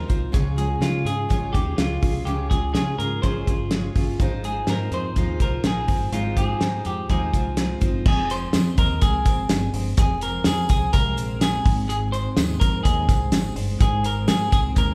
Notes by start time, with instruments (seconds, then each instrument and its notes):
Already playing: clean electric guitar G#2 F3 G#3 F4
0.08 fingered electric bass C2, clean electric guitar C4, steel-string acoustic guitar D#4 F4 C5, kick, closed hi-hat
0.32 fingered electric bass C#2, steel-string acoustic guitar C#3 G#3 C#4 F4 G#4, clean electric guitar C#3, kick, closed hi-hat
0.56 clean electric guitar G#3 G#4, steel-string acoustic guitar C#4 F4 G#4, closed hi-hat
0.80 fingered electric bass C#3, steel-string acoustic guitar G#3 C#4 F4 G#4, clean electric guitar D#4 F4, snare, closed hi-hat
0.94 clean electric guitar F4
1.05 fingered electric bass G#2, steel-string acoustic guitar C#4 F4 G#4, clean electric guitar G#4, closed hi-hat
1.29 fingered electric bass G#1, steel-string acoustic guitar C#3 G#3 C#4 F4 G#4, clean electric guitar F3, kick, closed hi-hat
1.53 fingered electric bass D#2, steel-string acoustic guitar C#4 F4 G#4, clean electric guitar D#4 G4, kick, closed hi-hat
1.65 clean electric guitar F4
1.77 fingered electric bass C#2, steel-string acoustic guitar G#3 C#4 F4 G#4, clean electric guitar F4 G#4, snare, closed hi-hat
2.01 fingered electric bass C2, steel-string acoustic guitar C#4 F4 G#4, clean electric guitar F4, kick, open hi-hat
2.25 fingered electric bass C#2, clean electric guitar C#3 G4, steel-string acoustic guitar C#3 G#3 C#4 F4 G#4, closed hi-hat
2.50 clean electric guitar G#3 G#4, steel-string acoustic guitar C#4 F4 G#4, kick, closed hi-hat
2.74 fingered electric bass C#3, steel-string acoustic guitar G#3 C#4 F4 G#4, clean electric guitar F4 G#4, snare, closed hi-hat
2.98 fingered electric bass G#2, steel-string acoustic guitar C#4 F4 G#4, clean electric guitar G#4 A#4, closed hi-hat
3.22 fingered electric bass G#1, steel-string acoustic guitar C#3 G#3 C#4 F4 G#4, clean electric guitar F3 C5, kick, closed hi-hat
3.46 fingered electric bass G1, clean electric guitar F4, steel-string acoustic guitar F4 G#4, kick, closed hi-hat
3.50 steel-string acoustic guitar C#4
3.71 steel-string acoustic guitar G#3 C#4 F4, clean electric guitar G#4, snare, closed hi-hat
3.75 steel-string acoustic guitar G#4
3.95 fingered electric bass G1, steel-string acoustic guitar C#4 F4 G#4, clean electric guitar F4, kick, open hi-hat
4.19 fingered electric bass G#1, clean electric guitar G#2, steel-string acoustic guitar G#3 D#4 F4 C5, kick, closed hi-hat
4.43 clean electric guitar G#3 G#4, steel-string acoustic guitar D#4 F4 C5, closed hi-hat
4.67 fingered electric bass G#2, steel-string acoustic guitar G#3 D#4 F4 C5, clean electric guitar C4 A#4, snare, closed hi-hat
4.91 fingered electric bass F2, steel-string acoustic guitar D#4 F4 C5, clean electric guitar G#4 C5, closed hi-hat
5.15 fingered electric bass D#2, clean electric guitar F3, steel-string acoustic guitar G#3 D#4 F4 C5, kick, closed hi-hat
5.40 fingered electric bass C2, clean electric guitar C4 A#4, steel-string acoustic guitar D#4 F4 C5, kick, closed hi-hat
5.63 fingered electric bass A#1, steel-string acoustic guitar G#3 D#4 F4 C5, clean electric guitar G#4, snare, closed hi-hat
5.87 fingered electric bass G1, clean electric guitar C4, steel-string acoustic guitar D#4 F4 C5, kick, open hi-hat
6.12 fingered electric bass G#1, clean electric guitar G#2 F4, steel-string acoustic guitar G#3 D#4 F4 C5, closed hi-hat
6.36 clean electric guitar G#3 G#4, steel-string acoustic guitar D#4 F4 C5, kick, closed hi-hat
6.60 fingered electric bass G#2, steel-string acoustic guitar G#3 D#4 F4 C5, clean electric guitar C4, snare, closed hi-hat
6.84 fingered electric bass F2, steel-string acoustic guitar D#4 F4 C5, clean electric guitar G4 G#4, closed hi-hat
7.09 fingered electric bass D#2, clean electric guitar F3 G#4, steel-string acoustic guitar G#3 D#4 F4 C5, kick, closed hi-hat
7.33 fingered electric bass C2, clean electric guitar C4, steel-string acoustic guitar D#4 F4 C5, kick, closed hi-hat
7.56 steel-string acoustic guitar G#3 D#4 F4 C5, clean electric guitar G#4, snare, closed hi-hat
7.80 fingered electric bass G1, clean electric guitar C4, steel-string acoustic guitar D#4 F4 C5, kick, closed hi-hat
8.06 fingered electric bass F1, clean electric guitar F2 G#4, kick, crash, tambourine
8.30 clean electric guitar C4 C5, closed hi-hat, tambourine
8.53 fingered electric bass F2, clean electric guitar G#4, snare, closed hi-hat, tambourine
8.78 fingered electric bass D#2, clean electric guitar C4 A#4, kick, closed hi-hat, tambourine
9.02 fingered electric bass C2, clean electric guitar G#3 G#4, kick, closed hi-hat, tambourine
9.25 fingered electric bass G#1, clean electric guitar C4, kick, snare, closed hi-hat, tambourine
9.49 fingered electric bass G1, clean electric guitar G#4, snare, closed hi-hat, tambourine
9.74 fingered electric bass G1, clean electric guitar C4, open hi-hat
9.97 fingered electric bass F1, clean electric guitar F2 G#4, kick, closed hi-hat
10.21 clean electric guitar C4 A#4, closed hi-hat, tambourine
10.44 fingered electric bass F2, clean electric guitar G#4, snare, closed hi-hat, tambourine
10.69 fingered electric bass C2, clean electric guitar C4 G#4, kick, closed hi-hat, tambourine
10.93 fingered electric bass C2, clean electric guitar G#3 A#4, kick, closed hi-hat, tambourine
11.16 fingered electric bass A#1, clean electric guitar C4, closed hi-hat, tambourine
11.41 clean electric guitar G#4, snare, closed hi-hat, tambourine
11.64 fingered electric bass G#1, clean electric guitar G#2, kick, open hi-hat
11.88 clean electric guitar G#2 G#4, closed hi-hat
12.12 clean electric guitar C4 C5, closed hi-hat, tambourine
12.36 fingered electric bass D#2, clean electric guitar G#4, snare, closed hi-hat, tambourine
12.60 fingered electric bass F2, clean electric guitar C4 A#4, kick, closed hi-hat, tambourine
12.83 fingered electric bass D#2, clean electric guitar G#3 G#4, kick, closed hi-hat, tambourine
13.08 fingered electric bass C2, clean electric guitar C4, kick, snare, closed hi-hat, tambourine
13.31 fingered electric bass G#1, clean electric guitar G#4, snare, closed hi-hat, tambourine
13.55 fingered electric bass G1, clean electric guitar C4, open hi-hat
13.79 fingered electric bass G#1, clean electric guitar G#2 G#4, kick, closed hi-hat
14.03 clean electric guitar C4 A#4, closed hi-hat, tambourine
14.28 fingered electric bass G#2, clean electric guitar G#4, snare, closed hi-hat, tambourine
14.51 fingered electric bass C2, clean electric guitar C4 G#4, kick, closed hi-hat, tambourine
14.75 fingered electric bass D#2, clean electric guitar G#3 A#4, kick, closed hi-hat, tambourine